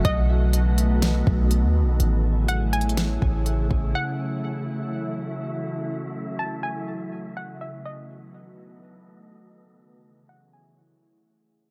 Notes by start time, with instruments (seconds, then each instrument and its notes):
Already playing: ambient pad F#3 A3 F#4
0.05 808-style bass B1, ambient pad D#3 B3, synth texture B3 A4 D#5, synth pluck D#5, kick, closed hi-hat
0.53 closed hi-hat
0.78 closed hi-hat
1.02 snare, closed hi-hat
1.27 808-style bass B1, kick
1.51 closed hi-hat
1.63 808-style bass D#2
1.82 808-style bass B1
2.00 808-style bass A1, ambient pad C#3 E3 E4 G#4, synth texture A3 G#4 C#5, closed hi-hat
2.48 synth pluck F#5, closed hi-hat
2.73 synth pluck G#5, closed hi-hat
2.81 closed hi-hat
2.89 closed hi-hat
2.97 snare, closed hi-hat
3.22 808-style bass A1, kick
3.46 closed hi-hat
3.71 808-style bass A1, kick
3.95 ambient pad E3 F#3, synth texture F#4 E5, synth pluck F#5
6.39 synth pluck A5
6.63 synth pluck G#5
7.37 synth pluck F#5
7.61 synth pluck E5
7.85 ambient pad D#3 A3 B3 F#4, synth texture B3 A4 D#5, synth pluck D#5
9.80 ambient pad C#3 E3 E4 G#4, synth texture A3 G#4 C#5
10.29 synth pluck F#5
10.53 synth pluck G#5